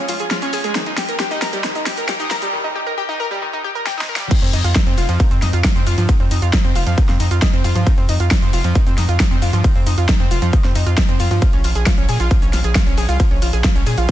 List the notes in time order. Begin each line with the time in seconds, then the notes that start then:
0.09 F4, open hi-hat, shaker
0.20 G#4, closed hi-hat, shaker
0.31 F4, snare, closed hi-hat, shaker
0.42 C#4, closed hi-hat, shaker
0.53 G#4, open hi-hat, shaker
0.64 G#3, closed hi-hat, shaker
0.75 D#3, snare, closed hi-hat, shaker
0.86 D#4, closed hi-hat
0.97 G4, snare, open hi-hat, shaker
1.09 A#4, closed hi-hat, shaker
1.20 G4, snare, closed hi-hat, shaker
1.31 D#4, closed hi-hat, shaker
1.42 A#4, snare, open hi-hat, shaker
1.53 G3, closed hi-hat, shaker
1.64 D#3, snare, closed hi-hat, shaker
1.75 D#4, closed hi-hat, shaker
1.86 G4, snare, open hi-hat, shaker
1.98 A#4, closed hi-hat, shaker
2.09 G4, snare, closed hi-hat, shaker
2.20 D#4, closed hi-hat, shaker
2.31 A#4, snare, open hi-hat, shaker
2.42 G3, closed hi-hat, shaker
2.53 D#3
2.64 D#4
2.75 G4
2.87 A#4
2.98 G4
3.09 D#4
3.20 A#4
3.31 G3
3.42 D#3
3.53 D#4
3.64 G4
3.75 A#4
3.87 G4, snare
3.98 D#4, snare
4.09 A#4
4.16 G3, snare
4.31 D#3, kick, closed hi-hat, crash, ride, shaker
4.42 F2 C4, closed hi-hat
4.53 F2 D#4, open hi-hat, shaker
4.64 F2 F4, closed hi-hat, shaker
4.75 D#4, kick, snare, closed hi-hat, ride, shaker
4.87 F2 C4, closed hi-hat, shaker
4.98 F1 F4, open hi-hat, shaker
5.09 F2 F3, closed hi-hat, shaker
5.20 D#3, kick, closed hi-hat, ride, shaker
5.31 F2 C4, closed hi-hat, shaker
5.42 F2 D#4, snare, open hi-hat, shaker
5.53 F2 F4, closed hi-hat, shaker
5.64 D#4, kick, snare, closed hi-hat, ride, shaker
5.75 F2 C4, closed hi-hat, shaker
5.87 F2 F4, open hi-hat, shaker
5.98 G2 F3, closed hi-hat, shaker
6.09 D#3, kick, closed hi-hat, ride, shaker
6.20 F2 C4, closed hi-hat
6.31 F2 D#4, open hi-hat, shaker
6.42 F2 F4, closed hi-hat, shaker
6.53 D#4, kick, snare, closed hi-hat, ride, shaker
6.64 F2 C4, closed hi-hat, shaker
6.75 F1 F4, open hi-hat, shaker
6.87 F2 F3, closed hi-hat, shaker
6.98 D#3, kick, closed hi-hat, ride, shaker
7.09 F2 C4, snare, closed hi-hat, shaker
7.20 F2 D#4, open hi-hat, shaker
7.31 F2 F4, closed hi-hat, shaker
7.42 D#4, kick, snare, closed hi-hat, ride, shaker
7.53 F2 C4, closed hi-hat, shaker
7.64 F2 F4, open hi-hat, shaker
7.75 G2 F3, closed hi-hat, shaker
7.87 D#3, kick, closed hi-hat, ride, shaker
7.98 F2 C4, closed hi-hat
8.09 F2 D#4, open hi-hat, shaker
8.20 F2 F4, closed hi-hat, shaker
8.31 D#4, kick, snare, closed hi-hat, ride, shaker
8.42 F2 C4, closed hi-hat, shaker
8.53 F1 F4, open hi-hat, shaker
8.64 F2 F3, closed hi-hat, shaker
8.75 D#3, kick, closed hi-hat, ride, shaker
8.86 F2 C4, closed hi-hat, shaker
8.97 F2 D#4, snare, open hi-hat, shaker
9.09 F2 F4, closed hi-hat, shaker
9.20 D#4, kick, snare, closed hi-hat, ride, shaker
9.31 F2 C4, closed hi-hat, shaker
9.42 F2 F4, open hi-hat, shaker
9.53 G2 F3, closed hi-hat, shaker
9.64 D#3, kick, closed hi-hat, ride, shaker
9.75 F2 C4, closed hi-hat
9.86 F2 D#4, open hi-hat, shaker
9.98 F2 F4, closed hi-hat, shaker
10.09 D#4, kick, snare, closed hi-hat, ride, shaker
10.20 F2 C4, closed hi-hat, shaker
10.31 F1 F4, open hi-hat, shaker
10.42 F2 F3, closed hi-hat, shaker
10.53 D#3, kick, closed hi-hat, ride, shaker
10.64 F2 C4, snare, closed hi-hat, shaker
10.75 F2 D#4, open hi-hat, shaker
10.86 F2 F4, closed hi-hat, shaker
10.98 D#4, kick, snare, closed hi-hat, ride, shaker
11.09 F2 C4, closed hi-hat, shaker
11.20 F2 F4, open hi-hat, shaker
11.31 G2 F3, closed hi-hat, shaker
11.42 F3, kick, closed hi-hat, ride, shaker
11.53 A#1 C#4, closed hi-hat
11.64 A#1 F4, open hi-hat, shaker
11.75 A#1 G#4, closed hi-hat, shaker
11.86 F4, kick, snare, closed hi-hat, ride, shaker
11.98 A#1 C#4, closed hi-hat, shaker
12.09 A#2 G#4, open hi-hat, shaker
12.20 A#1 F4, closed hi-hat, shaker
12.31 F3, kick, closed hi-hat, ride, shaker
12.42 A#1 C#4, closed hi-hat, shaker
12.53 A#1 F4, snare, open hi-hat, shaker
12.64 A#1 G#4, closed hi-hat, shaker
12.75 F4, kick, snare, closed hi-hat, ride, shaker
12.86 A#1 C#4, closed hi-hat, shaker
12.97 A#1 G#4, open hi-hat, shaker
13.09 C2 F4, closed hi-hat, shaker
13.20 F3, kick, closed hi-hat, ride, shaker
13.31 A#1 C#4, closed hi-hat
13.42 A#1 F4, open hi-hat, shaker
13.53 A#1 G#4, closed hi-hat, shaker
13.64 F4, kick, snare, closed hi-hat, ride, shaker
13.75 A#1 C#4, closed hi-hat, shaker
13.86 A#2 G#4, open hi-hat, shaker
13.98 A#1 F4, closed hi-hat, shaker